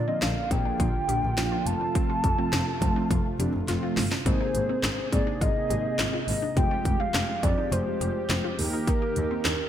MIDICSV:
0, 0, Header, 1, 7, 480
1, 0, Start_track
1, 0, Tempo, 576923
1, 1625, Time_signature, 4, 2, 24, 8
1, 8061, End_track
2, 0, Start_track
2, 0, Title_t, "Soft synth lead"
2, 0, Program_c, 0, 80
2, 65, Note_on_c, 0, 75, 87
2, 186, Note_on_c, 0, 77, 91
2, 198, Note_off_c, 0, 75, 0
2, 419, Note_off_c, 0, 77, 0
2, 424, Note_on_c, 0, 79, 110
2, 1385, Note_on_c, 0, 81, 118
2, 1397, Note_off_c, 0, 79, 0
2, 3065, Note_off_c, 0, 81, 0
2, 3547, Note_on_c, 0, 72, 92
2, 4233, Note_off_c, 0, 72, 0
2, 4266, Note_on_c, 0, 74, 90
2, 4505, Note_on_c, 0, 75, 104
2, 4518, Note_off_c, 0, 74, 0
2, 5220, Note_off_c, 0, 75, 0
2, 5225, Note_on_c, 0, 75, 102
2, 5466, Note_on_c, 0, 79, 120
2, 5478, Note_off_c, 0, 75, 0
2, 5824, Note_on_c, 0, 77, 109
2, 5837, Note_off_c, 0, 79, 0
2, 6184, Note_on_c, 0, 74, 96
2, 6197, Note_off_c, 0, 77, 0
2, 6424, Note_on_c, 0, 72, 89
2, 6437, Note_off_c, 0, 74, 0
2, 7145, Note_off_c, 0, 72, 0
2, 7386, Note_on_c, 0, 70, 94
2, 8061, Note_off_c, 0, 70, 0
2, 8061, End_track
3, 0, Start_track
3, 0, Title_t, "Synth arpeggio sound"
3, 0, Program_c, 1, 84
3, 64, Note_on_c, 1, 60, 80
3, 135, Note_off_c, 1, 60, 0
3, 184, Note_on_c, 1, 62, 86
3, 325, Note_off_c, 1, 62, 0
3, 424, Note_on_c, 1, 60, 82
3, 495, Note_off_c, 1, 60, 0
3, 544, Note_on_c, 1, 62, 72
3, 615, Note_off_c, 1, 62, 0
3, 664, Note_on_c, 1, 65, 91
3, 805, Note_off_c, 1, 65, 0
3, 904, Note_on_c, 1, 67, 79
3, 1045, Note_off_c, 1, 67, 0
3, 1144, Note_on_c, 1, 65, 83
3, 1215, Note_off_c, 1, 65, 0
3, 1263, Note_on_c, 1, 65, 78
3, 1405, Note_off_c, 1, 65, 0
3, 1505, Note_on_c, 1, 62, 75
3, 1575, Note_off_c, 1, 62, 0
3, 1624, Note_on_c, 1, 60, 93
3, 1695, Note_off_c, 1, 60, 0
3, 1744, Note_on_c, 1, 65, 74
3, 1886, Note_off_c, 1, 65, 0
3, 1984, Note_on_c, 1, 60, 79
3, 2055, Note_off_c, 1, 60, 0
3, 2105, Note_on_c, 1, 62, 89
3, 2246, Note_off_c, 1, 62, 0
3, 2345, Note_on_c, 1, 60, 82
3, 2415, Note_off_c, 1, 60, 0
3, 2465, Note_on_c, 1, 62, 73
3, 2536, Note_off_c, 1, 62, 0
3, 2584, Note_on_c, 1, 65, 89
3, 2726, Note_off_c, 1, 65, 0
3, 2825, Note_on_c, 1, 67, 80
3, 2966, Note_off_c, 1, 67, 0
3, 3065, Note_on_c, 1, 65, 88
3, 3136, Note_off_c, 1, 65, 0
3, 3185, Note_on_c, 1, 65, 73
3, 3326, Note_off_c, 1, 65, 0
3, 3425, Note_on_c, 1, 62, 73
3, 3496, Note_off_c, 1, 62, 0
3, 3545, Note_on_c, 1, 60, 93
3, 3616, Note_off_c, 1, 60, 0
3, 3665, Note_on_c, 1, 63, 76
3, 3806, Note_off_c, 1, 63, 0
3, 3905, Note_on_c, 1, 60, 79
3, 3976, Note_off_c, 1, 60, 0
3, 4025, Note_on_c, 1, 62, 85
3, 4166, Note_off_c, 1, 62, 0
3, 4264, Note_on_c, 1, 60, 81
3, 4335, Note_off_c, 1, 60, 0
3, 4385, Note_on_c, 1, 62, 76
3, 4455, Note_off_c, 1, 62, 0
3, 4505, Note_on_c, 1, 65, 92
3, 4646, Note_off_c, 1, 65, 0
3, 4745, Note_on_c, 1, 67, 80
3, 4886, Note_off_c, 1, 67, 0
3, 4984, Note_on_c, 1, 65, 86
3, 5055, Note_off_c, 1, 65, 0
3, 5104, Note_on_c, 1, 65, 78
3, 5246, Note_off_c, 1, 65, 0
3, 5344, Note_on_c, 1, 62, 78
3, 5415, Note_off_c, 1, 62, 0
3, 5464, Note_on_c, 1, 60, 97
3, 5535, Note_off_c, 1, 60, 0
3, 5584, Note_on_c, 1, 65, 75
3, 5726, Note_off_c, 1, 65, 0
3, 5824, Note_on_c, 1, 60, 80
3, 5895, Note_off_c, 1, 60, 0
3, 5944, Note_on_c, 1, 62, 87
3, 6086, Note_off_c, 1, 62, 0
3, 6184, Note_on_c, 1, 60, 82
3, 6255, Note_off_c, 1, 60, 0
3, 6305, Note_on_c, 1, 63, 71
3, 6375, Note_off_c, 1, 63, 0
3, 6424, Note_on_c, 1, 65, 89
3, 6566, Note_off_c, 1, 65, 0
3, 6665, Note_on_c, 1, 67, 78
3, 6806, Note_off_c, 1, 67, 0
3, 6905, Note_on_c, 1, 65, 87
3, 6975, Note_off_c, 1, 65, 0
3, 7025, Note_on_c, 1, 65, 75
3, 7166, Note_off_c, 1, 65, 0
3, 7265, Note_on_c, 1, 63, 77
3, 7335, Note_off_c, 1, 63, 0
3, 7385, Note_on_c, 1, 63, 95
3, 7455, Note_off_c, 1, 63, 0
3, 7505, Note_on_c, 1, 67, 75
3, 7646, Note_off_c, 1, 67, 0
3, 7745, Note_on_c, 1, 60, 78
3, 7816, Note_off_c, 1, 60, 0
3, 7865, Note_on_c, 1, 62, 89
3, 8006, Note_off_c, 1, 62, 0
3, 8061, End_track
4, 0, Start_track
4, 0, Title_t, "Analog polysynth"
4, 0, Program_c, 2, 90
4, 63, Note_on_c, 2, 53, 74
4, 63, Note_on_c, 2, 58, 68
4, 63, Note_on_c, 2, 62, 71
4, 63, Note_on_c, 2, 65, 83
4, 279, Note_off_c, 2, 53, 0
4, 279, Note_off_c, 2, 58, 0
4, 279, Note_off_c, 2, 62, 0
4, 279, Note_off_c, 2, 65, 0
4, 424, Note_on_c, 2, 53, 73
4, 424, Note_on_c, 2, 58, 69
4, 424, Note_on_c, 2, 62, 69
4, 424, Note_on_c, 2, 68, 81
4, 711, Note_off_c, 2, 53, 0
4, 711, Note_off_c, 2, 58, 0
4, 711, Note_off_c, 2, 62, 0
4, 711, Note_off_c, 2, 68, 0
4, 904, Note_on_c, 2, 58, 69
4, 904, Note_on_c, 2, 65, 85
4, 905, Note_on_c, 2, 53, 76
4, 905, Note_on_c, 2, 62, 73
4, 1021, Note_off_c, 2, 53, 0
4, 1021, Note_off_c, 2, 58, 0
4, 1021, Note_off_c, 2, 62, 0
4, 1021, Note_off_c, 2, 65, 0
4, 1144, Note_on_c, 2, 58, 85
4, 1144, Note_on_c, 2, 65, 98
4, 1145, Note_on_c, 2, 53, 88
4, 1145, Note_on_c, 2, 62, 85
4, 1374, Note_off_c, 2, 53, 0
4, 1374, Note_off_c, 2, 65, 0
4, 1384, Note_on_c, 2, 53, 81
4, 1384, Note_on_c, 2, 57, 74
4, 1384, Note_on_c, 2, 60, 74
4, 1384, Note_on_c, 2, 65, 91
4, 1385, Note_off_c, 2, 58, 0
4, 1385, Note_off_c, 2, 62, 0
4, 1865, Note_off_c, 2, 53, 0
4, 1865, Note_off_c, 2, 57, 0
4, 1865, Note_off_c, 2, 60, 0
4, 1865, Note_off_c, 2, 65, 0
4, 1984, Note_on_c, 2, 53, 90
4, 1984, Note_on_c, 2, 57, 82
4, 1984, Note_on_c, 2, 60, 82
4, 1984, Note_on_c, 2, 65, 100
4, 2199, Note_off_c, 2, 53, 0
4, 2199, Note_off_c, 2, 57, 0
4, 2199, Note_off_c, 2, 60, 0
4, 2199, Note_off_c, 2, 65, 0
4, 2343, Note_on_c, 2, 53, 91
4, 2343, Note_on_c, 2, 57, 81
4, 2343, Note_on_c, 2, 60, 82
4, 2343, Note_on_c, 2, 65, 96
4, 2630, Note_off_c, 2, 65, 0
4, 2631, Note_off_c, 2, 53, 0
4, 2631, Note_off_c, 2, 57, 0
4, 2631, Note_off_c, 2, 60, 0
4, 2824, Note_on_c, 2, 53, 92
4, 2824, Note_on_c, 2, 57, 84
4, 2824, Note_on_c, 2, 60, 85
4, 2824, Note_on_c, 2, 62, 102
4, 2940, Note_off_c, 2, 60, 0
4, 2941, Note_off_c, 2, 53, 0
4, 2941, Note_off_c, 2, 57, 0
4, 2941, Note_off_c, 2, 62, 0
4, 3065, Note_on_c, 2, 53, 91
4, 3065, Note_on_c, 2, 57, 84
4, 3065, Note_on_c, 2, 60, 81
4, 3065, Note_on_c, 2, 65, 100
4, 3351, Note_off_c, 2, 53, 0
4, 3351, Note_off_c, 2, 57, 0
4, 3351, Note_off_c, 2, 60, 0
4, 3351, Note_off_c, 2, 65, 0
4, 3544, Note_on_c, 2, 58, 80
4, 3544, Note_on_c, 2, 63, 71
4, 3545, Note_on_c, 2, 60, 73
4, 3545, Note_on_c, 2, 68, 86
4, 3974, Note_off_c, 2, 58, 0
4, 3974, Note_off_c, 2, 60, 0
4, 3974, Note_off_c, 2, 63, 0
4, 3974, Note_off_c, 2, 68, 0
4, 4264, Note_on_c, 2, 58, 76
4, 4264, Note_on_c, 2, 60, 69
4, 4264, Note_on_c, 2, 63, 70
4, 4265, Note_on_c, 2, 68, 83
4, 4479, Note_off_c, 2, 58, 0
4, 4479, Note_off_c, 2, 60, 0
4, 4479, Note_off_c, 2, 63, 0
4, 4480, Note_off_c, 2, 68, 0
4, 4625, Note_on_c, 2, 58, 76
4, 4625, Note_on_c, 2, 60, 69
4, 4625, Note_on_c, 2, 63, 72
4, 4625, Note_on_c, 2, 68, 84
4, 5126, Note_off_c, 2, 58, 0
4, 5126, Note_off_c, 2, 60, 0
4, 5126, Note_off_c, 2, 63, 0
4, 5126, Note_off_c, 2, 68, 0
4, 5464, Note_on_c, 2, 56, 80
4, 5464, Note_on_c, 2, 60, 72
4, 5464, Note_on_c, 2, 65, 72
4, 5464, Note_on_c, 2, 67, 91
4, 5894, Note_off_c, 2, 56, 0
4, 5894, Note_off_c, 2, 60, 0
4, 5894, Note_off_c, 2, 65, 0
4, 5894, Note_off_c, 2, 67, 0
4, 6184, Note_on_c, 2, 56, 77
4, 6184, Note_on_c, 2, 60, 71
4, 6184, Note_on_c, 2, 65, 71
4, 6184, Note_on_c, 2, 67, 82
4, 6399, Note_off_c, 2, 56, 0
4, 6399, Note_off_c, 2, 60, 0
4, 6399, Note_off_c, 2, 65, 0
4, 6399, Note_off_c, 2, 67, 0
4, 6544, Note_on_c, 2, 56, 79
4, 6544, Note_on_c, 2, 60, 70
4, 6544, Note_on_c, 2, 65, 74
4, 6544, Note_on_c, 2, 67, 86
4, 7045, Note_off_c, 2, 56, 0
4, 7045, Note_off_c, 2, 65, 0
4, 7045, Note_off_c, 2, 67, 0
4, 7046, Note_off_c, 2, 60, 0
4, 7144, Note_on_c, 2, 58, 98
4, 7144, Note_on_c, 2, 63, 87
4, 7144, Note_on_c, 2, 67, 92
4, 7144, Note_on_c, 2, 70, 108
4, 7912, Note_off_c, 2, 63, 0
4, 7912, Note_off_c, 2, 67, 0
4, 7912, Note_off_c, 2, 70, 0
4, 7913, Note_off_c, 2, 58, 0
4, 8061, End_track
5, 0, Start_track
5, 0, Title_t, "Analog synth pad"
5, 0, Program_c, 3, 89
5, 0, Note_on_c, 3, 50, 83
5, 0, Note_on_c, 3, 58, 76
5, 0, Note_on_c, 3, 65, 87
5, 1366, Note_off_c, 3, 50, 0
5, 1366, Note_off_c, 3, 58, 0
5, 1385, Note_on_c, 3, 57, 74
5, 1386, Note_on_c, 3, 48, 81
5, 3512, Note_off_c, 3, 65, 0
5, 3523, Note_off_c, 3, 57, 0
5, 3524, Note_off_c, 3, 48, 0
5, 3545, Note_on_c, 3, 48, 79
5, 3545, Note_on_c, 3, 58, 73
5, 3545, Note_on_c, 3, 68, 88
5, 5446, Note_off_c, 3, 48, 0
5, 5446, Note_off_c, 3, 58, 0
5, 5446, Note_off_c, 3, 68, 0
5, 5466, Note_on_c, 3, 53, 81
5, 5466, Note_on_c, 3, 56, 72
5, 5466, Note_on_c, 3, 67, 89
5, 7129, Note_off_c, 3, 53, 0
5, 7129, Note_off_c, 3, 56, 0
5, 7146, Note_on_c, 3, 51, 82
5, 7146, Note_on_c, 3, 58, 75
5, 8061, Note_off_c, 3, 51, 0
5, 8061, Note_off_c, 3, 58, 0
5, 8061, Note_off_c, 3, 67, 0
5, 8061, End_track
6, 0, Start_track
6, 0, Title_t, "Double bass"
6, 0, Program_c, 4, 43
6, 184, Note_on_c, 4, 34, 95
6, 251, Note_off_c, 4, 34, 0
6, 424, Note_on_c, 4, 34, 97
6, 490, Note_off_c, 4, 34, 0
6, 664, Note_on_c, 4, 34, 103
6, 730, Note_off_c, 4, 34, 0
6, 906, Note_on_c, 4, 34, 101
6, 972, Note_off_c, 4, 34, 0
6, 1026, Note_on_c, 4, 34, 89
6, 1092, Note_off_c, 4, 34, 0
6, 1145, Note_on_c, 4, 34, 90
6, 1212, Note_off_c, 4, 34, 0
6, 1386, Note_on_c, 4, 29, 97
6, 1452, Note_off_c, 4, 29, 0
6, 1862, Note_on_c, 4, 41, 99
6, 1929, Note_off_c, 4, 41, 0
6, 2106, Note_on_c, 4, 29, 99
6, 2173, Note_off_c, 4, 29, 0
6, 2344, Note_on_c, 4, 29, 107
6, 2410, Note_off_c, 4, 29, 0
6, 2584, Note_on_c, 4, 29, 108
6, 2651, Note_off_c, 4, 29, 0
6, 2825, Note_on_c, 4, 29, 101
6, 2892, Note_off_c, 4, 29, 0
6, 2945, Note_on_c, 4, 29, 92
6, 3011, Note_off_c, 4, 29, 0
6, 3064, Note_on_c, 4, 29, 92
6, 3131, Note_off_c, 4, 29, 0
6, 3304, Note_on_c, 4, 31, 93
6, 3371, Note_off_c, 4, 31, 0
6, 3544, Note_on_c, 4, 32, 109
6, 3611, Note_off_c, 4, 32, 0
6, 3785, Note_on_c, 4, 32, 96
6, 3851, Note_off_c, 4, 32, 0
6, 4024, Note_on_c, 4, 32, 92
6, 4091, Note_off_c, 4, 32, 0
6, 4264, Note_on_c, 4, 44, 100
6, 4331, Note_off_c, 4, 44, 0
6, 4504, Note_on_c, 4, 32, 96
6, 4570, Note_off_c, 4, 32, 0
6, 4744, Note_on_c, 4, 32, 97
6, 4811, Note_off_c, 4, 32, 0
6, 4985, Note_on_c, 4, 32, 90
6, 5051, Note_off_c, 4, 32, 0
6, 5225, Note_on_c, 4, 32, 94
6, 5291, Note_off_c, 4, 32, 0
6, 5464, Note_on_c, 4, 29, 106
6, 5531, Note_off_c, 4, 29, 0
6, 5702, Note_on_c, 4, 29, 101
6, 5768, Note_off_c, 4, 29, 0
6, 5944, Note_on_c, 4, 29, 99
6, 6011, Note_off_c, 4, 29, 0
6, 6184, Note_on_c, 4, 41, 100
6, 6250, Note_off_c, 4, 41, 0
6, 6424, Note_on_c, 4, 29, 109
6, 6491, Note_off_c, 4, 29, 0
6, 6665, Note_on_c, 4, 29, 96
6, 6731, Note_off_c, 4, 29, 0
6, 6905, Note_on_c, 4, 29, 106
6, 6971, Note_off_c, 4, 29, 0
6, 7144, Note_on_c, 4, 39, 92
6, 7211, Note_off_c, 4, 39, 0
6, 7625, Note_on_c, 4, 39, 107
6, 7691, Note_off_c, 4, 39, 0
6, 7864, Note_on_c, 4, 39, 96
6, 7931, Note_off_c, 4, 39, 0
6, 8061, End_track
7, 0, Start_track
7, 0, Title_t, "Drums"
7, 183, Note_on_c, 9, 38, 100
7, 186, Note_on_c, 9, 42, 71
7, 266, Note_off_c, 9, 38, 0
7, 269, Note_off_c, 9, 42, 0
7, 424, Note_on_c, 9, 36, 91
7, 424, Note_on_c, 9, 42, 74
7, 507, Note_off_c, 9, 36, 0
7, 508, Note_off_c, 9, 42, 0
7, 664, Note_on_c, 9, 36, 94
7, 665, Note_on_c, 9, 42, 71
7, 747, Note_off_c, 9, 36, 0
7, 748, Note_off_c, 9, 42, 0
7, 906, Note_on_c, 9, 42, 69
7, 989, Note_off_c, 9, 42, 0
7, 1144, Note_on_c, 9, 42, 80
7, 1146, Note_on_c, 9, 38, 105
7, 1227, Note_off_c, 9, 42, 0
7, 1229, Note_off_c, 9, 38, 0
7, 1385, Note_on_c, 9, 42, 79
7, 1469, Note_off_c, 9, 42, 0
7, 1624, Note_on_c, 9, 36, 110
7, 1624, Note_on_c, 9, 42, 79
7, 1707, Note_off_c, 9, 36, 0
7, 1708, Note_off_c, 9, 42, 0
7, 1862, Note_on_c, 9, 36, 91
7, 1862, Note_on_c, 9, 42, 63
7, 1945, Note_off_c, 9, 36, 0
7, 1945, Note_off_c, 9, 42, 0
7, 2103, Note_on_c, 9, 38, 105
7, 2106, Note_on_c, 9, 42, 72
7, 2187, Note_off_c, 9, 38, 0
7, 2189, Note_off_c, 9, 42, 0
7, 2344, Note_on_c, 9, 36, 97
7, 2345, Note_on_c, 9, 42, 73
7, 2427, Note_off_c, 9, 36, 0
7, 2428, Note_off_c, 9, 42, 0
7, 2584, Note_on_c, 9, 36, 97
7, 2586, Note_on_c, 9, 42, 72
7, 2667, Note_off_c, 9, 36, 0
7, 2669, Note_off_c, 9, 42, 0
7, 2826, Note_on_c, 9, 42, 69
7, 2909, Note_off_c, 9, 42, 0
7, 3064, Note_on_c, 9, 42, 81
7, 3065, Note_on_c, 9, 38, 57
7, 3147, Note_off_c, 9, 42, 0
7, 3148, Note_off_c, 9, 38, 0
7, 3304, Note_on_c, 9, 38, 90
7, 3305, Note_on_c, 9, 46, 80
7, 3387, Note_off_c, 9, 38, 0
7, 3388, Note_off_c, 9, 46, 0
7, 3425, Note_on_c, 9, 38, 93
7, 3508, Note_off_c, 9, 38, 0
7, 3544, Note_on_c, 9, 36, 107
7, 3544, Note_on_c, 9, 42, 82
7, 3627, Note_off_c, 9, 36, 0
7, 3628, Note_off_c, 9, 42, 0
7, 3782, Note_on_c, 9, 42, 64
7, 3866, Note_off_c, 9, 42, 0
7, 4024, Note_on_c, 9, 38, 107
7, 4024, Note_on_c, 9, 39, 86
7, 4026, Note_on_c, 9, 42, 72
7, 4107, Note_off_c, 9, 38, 0
7, 4107, Note_off_c, 9, 39, 0
7, 4109, Note_off_c, 9, 42, 0
7, 4264, Note_on_c, 9, 36, 94
7, 4265, Note_on_c, 9, 42, 75
7, 4347, Note_off_c, 9, 36, 0
7, 4348, Note_off_c, 9, 42, 0
7, 4504, Note_on_c, 9, 36, 95
7, 4506, Note_on_c, 9, 42, 74
7, 4587, Note_off_c, 9, 36, 0
7, 4589, Note_off_c, 9, 42, 0
7, 4747, Note_on_c, 9, 42, 67
7, 4830, Note_off_c, 9, 42, 0
7, 4984, Note_on_c, 9, 42, 80
7, 4985, Note_on_c, 9, 38, 103
7, 4985, Note_on_c, 9, 39, 85
7, 5067, Note_off_c, 9, 42, 0
7, 5068, Note_off_c, 9, 38, 0
7, 5068, Note_off_c, 9, 39, 0
7, 5225, Note_on_c, 9, 46, 82
7, 5308, Note_off_c, 9, 46, 0
7, 5464, Note_on_c, 9, 36, 113
7, 5464, Note_on_c, 9, 42, 79
7, 5547, Note_off_c, 9, 36, 0
7, 5547, Note_off_c, 9, 42, 0
7, 5702, Note_on_c, 9, 36, 97
7, 5702, Note_on_c, 9, 42, 62
7, 5785, Note_off_c, 9, 36, 0
7, 5785, Note_off_c, 9, 42, 0
7, 5944, Note_on_c, 9, 38, 101
7, 5944, Note_on_c, 9, 39, 83
7, 5946, Note_on_c, 9, 42, 71
7, 6027, Note_off_c, 9, 38, 0
7, 6027, Note_off_c, 9, 39, 0
7, 6030, Note_off_c, 9, 42, 0
7, 6184, Note_on_c, 9, 36, 95
7, 6185, Note_on_c, 9, 42, 75
7, 6267, Note_off_c, 9, 36, 0
7, 6268, Note_off_c, 9, 42, 0
7, 6425, Note_on_c, 9, 42, 72
7, 6509, Note_off_c, 9, 42, 0
7, 6666, Note_on_c, 9, 42, 68
7, 6749, Note_off_c, 9, 42, 0
7, 6903, Note_on_c, 9, 42, 83
7, 6905, Note_on_c, 9, 38, 104
7, 6905, Note_on_c, 9, 39, 82
7, 6986, Note_off_c, 9, 42, 0
7, 6988, Note_off_c, 9, 38, 0
7, 6988, Note_off_c, 9, 39, 0
7, 7145, Note_on_c, 9, 46, 83
7, 7228, Note_off_c, 9, 46, 0
7, 7384, Note_on_c, 9, 36, 107
7, 7384, Note_on_c, 9, 42, 80
7, 7467, Note_off_c, 9, 36, 0
7, 7467, Note_off_c, 9, 42, 0
7, 7622, Note_on_c, 9, 42, 63
7, 7705, Note_off_c, 9, 42, 0
7, 7863, Note_on_c, 9, 38, 109
7, 7863, Note_on_c, 9, 39, 86
7, 7866, Note_on_c, 9, 42, 72
7, 7947, Note_off_c, 9, 38, 0
7, 7947, Note_off_c, 9, 39, 0
7, 7949, Note_off_c, 9, 42, 0
7, 8061, End_track
0, 0, End_of_file